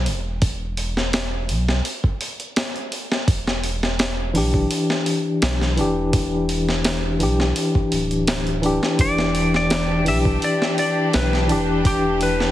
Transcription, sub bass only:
0.07 E1
1.49 B1
3.28 E1
4.35 B1
5.42 B1
5.78 E1
7.20 B1
7.92 D1
8.99 E1
10.06 B1
11.14 B1
11.50 E1

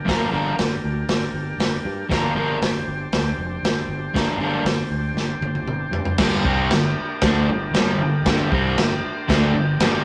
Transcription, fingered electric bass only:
0.08 G1
0.34 G1
0.60 G1
0.84 D2
1.08 G1
1.34 G1
1.58 G1
1.85 G2
2.10 G1
2.35 G1
2.61 G1
2.88 G1
3.13 D2
3.38 F1
3.63 G1
3.88 G1
4.15 G1
4.38 G1
4.65 G1
4.90 D2
5.14 G1
5.41 G1
5.66 G1
5.91 G2
6.18 G1
6.45 C2
6.72 G1
7.22 D2
7.47 G1
7.74 G1
7.99 G1
8.25 G1
8.51 C2
8.76 G1
9.29 D2
9.53 G1
9.80 G1

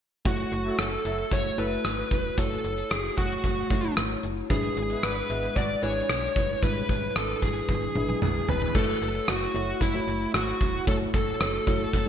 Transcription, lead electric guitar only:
0.27 F#4
0.79 A4
1.33 C#5
1.59 B4
2.38 A4
2.92 G#4
3.18 F#4
4.50 G#4
5.03 B4
5.57 D5
5.83 C#5
6.63 B4
7.16 A4
7.43 G#4
8.23 G#4
8.49 B4
8.76 A4
9.29 F#4
9.82 E4
10.35 F#4
10.88 A4
11.14 A4

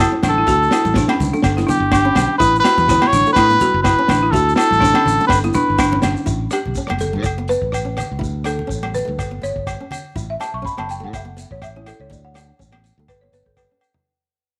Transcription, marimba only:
0.00 E4
0.25 D4
0.38 E4
0.48 F#4
0.73 E4
0.97 D4
1.10 C#4
1.33 D4
1.57 E4
1.67 D4
1.92 D4
2.05 C#4
2.40 E4
2.64 F#4
2.89 E4
3.13 D4
3.38 E4
3.62 F#4
3.85 E4
4.10 D4
4.22 E4
4.33 F#4
4.58 E4
4.80 D4
4.95 C#4
5.19 D4
5.44 E4
5.55 D4
5.80 D4
5.92 C#4
6.53 G4
7.01 A4
7.49 B4
8.46 A4
8.95 B4
9.43 C#5
10.30 E5
10.40 A5
10.54 C#6
10.65 B5
10.79 A5
10.91 G5
11.04 F#5
11.15 E5
11.52 C#5
11.63 E5
11.76 E4
11.87 A4
12.01 C#5
12.11 D5
12.25 F#5
13.09 B4
13.21 C#5
13.34 B4
13.46 A4
13.58 B4

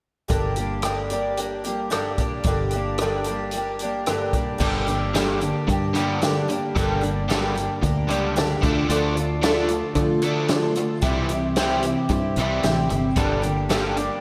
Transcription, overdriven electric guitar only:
4.61 G2 D3 G3
4.87 G2 D3
5.14 G2 D3 G3
5.41 G2 D3
5.68 G2 D3
5.94 G2 D3 G3
6.21 G2 D3
6.49 G2 D3
6.75 G2 D3 G3
7.02 G2 D3
7.28 G2 D3 G3
7.55 G2 D3
7.82 G2 D3
8.07 G2 D3 G3
8.36 G2 D3
8.62 D3 A3 D4
8.89 D3 A3 D4
9.15 D3 A3
9.42 D3 A3 D4
9.69 D3 A3
9.96 D3 A3
10.23 D3 A3 D4
10.50 D3 A3
10.77 D3 A3
11.03 C3 E3 G3
11.31 C3 E3
11.57 C3 E3 G3
11.83 C3 E3
12.10 C3 E3
12.38 C3 E3 G3
12.64 C3 E3
12.90 C3 E3
13.16 G2 D3 G3
13.44 G2 D3
13.70 G2 D3 G3
13.96 G2 D3

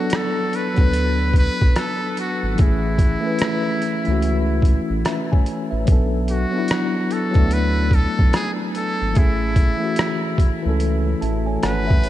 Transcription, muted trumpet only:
Already playing: F#4
0.15 A4
0.56 B4
1.38 B4
1.78 A4
2.20 F#4
2.61 E4
6.30 F#4
7.13 A4
7.53 B4
7.95 A4
8.35 G#4
8.77 A4
9.19 E4
11.66 B4

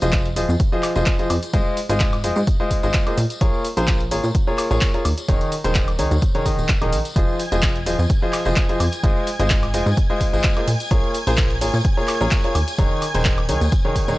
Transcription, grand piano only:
0.02 F3 F4 G#4 C5 D#5
0.36 F3 F4 G#4 C5 D#5
0.72 F3 F4 G#4 C5 D#5
0.96 F3 F4 G#4 C5 D#5
1.19 F3 F4 G#4 C5 D#5
1.53 G#3 F4 G#4 C5 D#5
1.89 G#3 F4 G#4 C5 D#5
2.24 G#3 F4 G#4 C5 D#5
2.60 G#3 F4 G#4 C5 D#5
2.83 G#3 F4 G#4 C5 D#5
3.07 A#3 F4 G#4 C5 D#5
3.41 A#3 F4 G#4 A#4 C#5
3.77 A#3 F4 G#4 A#4 C5
4.11 A#3 F4 G#4 A#4 C#5
4.47 A#3 F4 G#4 A#4 C#5
4.71 A#3 F4 G#4 A#4 C#5
4.94 F4 G#4 A#4 C#5
5.28 D#3 D#4 G#4 A#4 C#5
5.64 D#3 D#4 G#4 A#4 C5
5.99 D#3 D#4 G#4 A#4 C#5
6.35 D#3 D#4 G#4 A#4 C#5
6.46 D#3 D#4 G#4 A#4 D#5
6.82 D#3 D#4 G#4 A#4 D#5
7.16 F3 F4 G#4 C5 D#5
7.52 F3 F4 G#4 C5 D#5
7.86 F3 F4 G#4 C5 D#5
8.22 F3 F4 G#4 C5 D#5
8.46 F3 F4 G#4 C5 D#5
8.69 F3 F4 G#4 C5 D#5
9.03 G#3 F4 G#4 C5 D#5
9.39 G#3 F4 G#4 C5 D#5
9.74 G#3 F4 G#4 C5 D#5
10.10 G#3 F4 G#4 C5 D#5
10.33 G#3 F4 G#4 C5 D#5
10.57 A#3 F4 G#4 C5 D#5
10.91 A#3 F4 G#4 A#4 C#5
11.27 A#3 F4 G#4 A#4 C5
11.61 A#3 F4 G#4 A#4 C#5
11.97 A#3 F4 G#4 A#4 C#5
12.21 A#3 F4 G#4 A#4 C#5
12.44 F4 G#4 A#4 C#5
12.78 D#3 D#4 G#4 A#4 C#5
13.14 D#3 D#4 G#4 A#4 C5
13.49 D#3 D#4 G#4 A#4 C#5
13.85 D#3 D#4 G#4 A#4 C#5
14.08 D#3 D#4 G#4 A#4 C#5

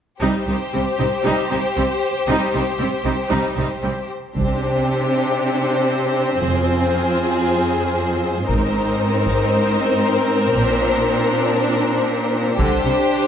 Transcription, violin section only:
0.22 G4 C5
4.37 G4 C5
6.43 G#4
8.49 A#4 C5
12.59 G4 C5

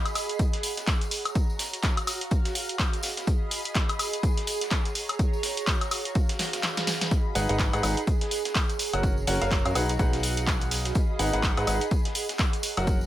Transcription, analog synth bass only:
7.36 G#1
7.50 G#1
7.74 G#2
7.83 G#1
8.93 F#1
9.27 F#1
9.41 F#1
9.65 F#2
9.75 B1
9.99 B1
11.19 G#1
11.33 G#1
11.57 G#2
11.67 G#1
12.77 F#1

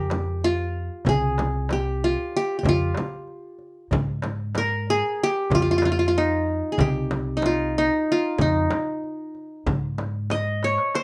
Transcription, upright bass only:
Already playing: F2
1.06 C2
2.64 F2
3.91 G#2
5.51 F2
6.78 C2
8.39 F2
9.67 G#2

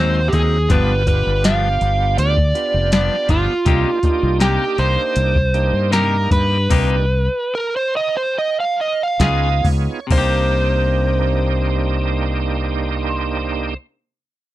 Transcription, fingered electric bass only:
Already playing: D#2
0.33 D#2
0.70 G1
1.27 G1
1.81 G1
2.18 D2
2.74 F1
3.29 G1
3.66 C2
4.03 muted fingered electric bass stroke
4.23 C2
4.78 C2
5.16 C2
5.73 G2
6.31 G2
6.70 C2
9.20 C#2
9.64 C#2
10.10 C2

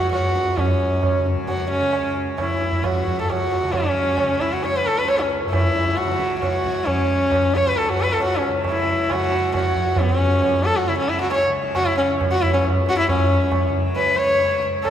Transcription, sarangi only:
Already playing: F#4
0.13 F#4
0.58 C#4
1.49 F#4
1.71 C#4
2.39 E4
2.84 F#4
3.21 A4
3.30 F#4
3.73 C#4
4.41 E4
4.53 F#4
4.64 C#5
4.76 B4
4.86 A4
4.98 B4
5.09 C#5
5.19 C#4
5.50 E4
5.97 F#4
6.40 F#4
6.86 C#4
7.55 C#5
7.67 B4
7.77 A4
7.85 F#4 A4
8.02 B4
8.13 A4
8.24 F#4
8.37 C#4
8.71 E4
9.12 F#4
9.56 F#4
9.99 B3
10.18 C#4
10.64 A4
10.76 F#4
10.88 E4
10.98 C#4
11.09 E4
11.21 F#4
11.32 C#5
11.76 F#4
11.86 E4
11.97 C#4
12.31 F#4
12.41 E4
12.53 C#4
12.89 F#4
12.99 E4
13.09 C#4
13.96 B4
14.18 C#5
14.83 A4

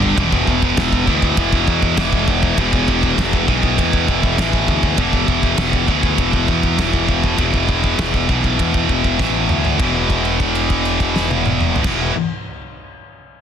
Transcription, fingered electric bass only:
Already playing: G1
0.17 E1
0.48 E1
0.77 E1
1.07 D2
1.37 E1
1.67 E2
1.97 E1
2.57 E1
3.17 E1
3.48 B1
3.78 E2
4.08 E1
4.39 A1
4.68 D2
4.98 E1
5.28 E1
5.58 E1
5.88 D2
6.18 E1
6.48 E2
6.79 E1
7.39 E1
7.99 E1
8.29 B1
8.59 E2
8.89 E1
9.19 A1
9.49 D2
9.79 E1
11.84 E1

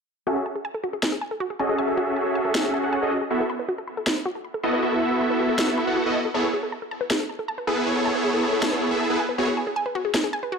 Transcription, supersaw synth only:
0.27 C#4 F#4 G#4 A4 E5
1.60 C#4 F#4 G#4 A4 D#5
1.79 C#4 F#4 G#4 A4 E5
2.83 C#4 F#4 G#4 A4 F#5
3.02 C#4 F#4 G#4 A4 D#5
3.31 B3 E4 F#4 A4 E5
4.63 B3 E4 F#4 A4 D#5
4.82 B3 E4 F#4 A4 E5
5.87 B3 E4 F#4 A4 F#5
6.06 B3 E4 F#4 A4 D#5
6.34 B3 E4 G#4 A4 C#5
7.67 B3 E4 G#4 A4 B4
7.86 B3 E4 G#4 A4 C#5
8.91 B3 E4 G#4 A4 E5
9.10 B3 E4 G#4 A4 B4
9.38 B3 E4 F#4 G#4 C#5

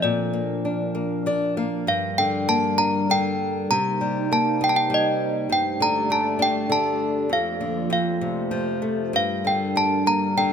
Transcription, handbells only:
0.02 D5
1.88 F5
2.18 G5
2.49 A5
2.78 A#5
3.11 G5
3.71 A#5
4.33 A5
4.64 G5
4.69 A5
4.76 G5
4.94 D#5
5.53 G5
5.82 A#5
6.12 A5
6.42 G5
6.72 A5
7.33 F5
7.93 F5
9.16 F5
9.47 G5
9.77 A5
10.07 A#5
10.38 G5

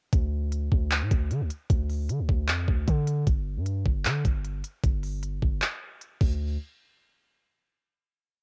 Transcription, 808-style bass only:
0.13 D2
0.72 D2
1.02 A2
1.11 D2
1.31 D3
1.41 D2
1.70 D2
2.09 D3
2.19 D2
2.29 D2
2.48 F2
2.68 D2
2.88 D3
3.27 G1
3.57 G2
3.86 G1
4.05 D3
4.25 G1
4.84 G1
5.42 G1
6.21 D2

